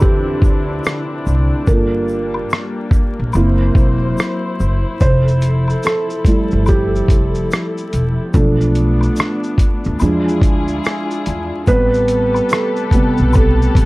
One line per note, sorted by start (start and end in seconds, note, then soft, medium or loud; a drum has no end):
0.00 0.35 E2 medium
0.00 1.64 D3 medium
0.00 1.69 F3 medium
0.00 1.64 C4 medium
0.00 1.70 C4 medium
0.00 3.30 D4 medium
0.00 1.64 E4 medium
0.00 1.69 E4 medium
0.00 1.73 G4 medium
0.00 1.69 A4 loud
0.00 1.70 B4 loud
0.00 kick medium
0.42 0.78 D2 medium
0.42 kick loud
0.42 shaker soft
0.84 cross-stick loud
0.84 shaker medium
1.27 1.49 C2 medium
1.27 shaker soft
1.67 2.39 G1 loud
1.67 3.32 G3 medium
1.67 4.97 A#3 medium
1.67 2.28 A#3 medium
1.67 2.28 F4 medium
1.67 2.28 A4 medium
1.67 3.30 A#4 medium
1.67 kick loud
1.67 shaker medium
2.08 shaker soft
2.34 high woodblock medium
2.50 cross-stick loud
2.50 shaker medium
2.91 kick medium
2.91 shaker soft
3.19 3.32 A#1 medium
3.33 3.70 F#1 loud
3.33 4.99 F#3 medium
3.33 3.94 A#3 medium
3.33 3.95 C4 soft
3.33 8.30 E4 medium
3.33 3.95 E4 medium
3.33 4.99 C5 medium
3.33 high woodblock medium
3.33 shaker medium
3.75 4.11 E1 medium
3.75 kick medium
3.75 shaker soft
4.18 cross-stick loud
4.18 shaker medium
4.60 4.82 F#1 medium
4.60 shaker medium
5.00 5.73 F1 loud
5.00 8.31 F3 medium
5.00 8.31 A4 medium
5.00 5.87 C5 loud
5.00 kick medium
5.00 shaker medium
5.28 shaker soft
5.42 closed hi-hat medium
5.42 shaker soft
5.68 high woodblock medium
5.68 shaker soft
5.83 6.70 A4 medium
5.83 cross-stick loud
5.83 shaker medium
6.10 shaker medium
6.25 7.47 G3 medium
6.25 7.48 A3 soft
6.25 7.48 E4 medium
6.25 kick medium
6.25 closed hi-hat medium
6.25 shaker soft
6.51 7.02 G1 medium
6.51 shaker soft
6.66 8.40 G4 medium
6.66 kick medium
6.66 high woodblock medium
6.66 shaker medium
6.96 shaker soft
7.08 7.45 F1 medium
7.08 kick loud
7.08 closed hi-hat medium
7.08 shaker medium
7.08 shaker soft
7.35 shaker soft
7.51 cross-stick loud
7.51 shaker medium
7.78 shaker soft
7.93 8.16 E1 medium
7.93 closed hi-hat medium
7.93 shaker soft
8.34 9.06 B1 loud
8.34 8.94 F3 medium
8.34 9.99 A3 medium
8.34 8.94 A3 medium
8.34 9.99 B3 medium
8.34 9.99 D4 medium
8.34 8.95 D4 medium
8.34 9.97 A4 medium
8.34 kick loud
8.34 shaker medium
8.61 shaker soft
8.75 closed hi-hat medium
8.75 shaker soft
9.01 high woodblock medium
9.01 shaker soft
9.16 cross-stick loud
9.16 shaker medium
9.43 shaker soft
9.58 kick medium
9.58 closed hi-hat medium
9.58 shaker soft
9.84 9.99 D2 medium
9.84 shaker soft
10.00 10.42 E2 loud
10.00 10.61 F3 medium
10.00 10.61 G#3 soft
10.00 11.66 D4 medium
10.00 10.61 D4 medium
10.00 11.66 E4 medium
10.00 11.66 F4 medium
10.00 11.66 G#4 medium
10.00 high woodblock medium
10.00 shaker medium
10.29 shaker soft
10.42 10.78 D2 medium
10.42 kick loud
10.42 closed hi-hat medium
10.42 shaker soft
10.68 shaker soft
10.84 cross-stick loud
10.84 shaker medium
11.11 shaker medium
11.26 11.49 E2 medium
11.26 closed hi-hat medium
11.26 shaker soft
11.26 shaker medium
11.67 12.39 A1 loud
11.67 12.93 G3 medium
11.67 13.85 A3 medium
11.67 12.93 B3 medium
11.67 13.85 C4 medium
11.67 13.85 G4 medium
11.67 13.85 A4 medium
11.67 13.85 B4 medium
11.67 12.54 B4 loud
11.67 kick loud
11.67 shaker medium
11.94 shaker medium
12.08 closed hi-hat medium
12.08 shaker soft
12.34 high woodblock medium
12.34 shaker soft
12.49 13.33 A4 medium
12.49 cross-stick loud
12.49 shaker medium
12.76 shaker soft
12.91 13.31 C3 soft
12.91 13.31 G3 soft
12.91 13.31 B3 medium
12.91 kick medium
12.91 closed hi-hat medium
12.91 shaker soft
13.18 13.68 B1 medium
13.18 shaker soft
13.33 13.85 A4 medium
13.33 kick medium
13.33 high woodblock medium
13.33 shaker medium
13.62 shaker soft
13.75 13.85 A1 loud
13.75 kick medium
13.75 closed hi-hat medium
13.75 shaker soft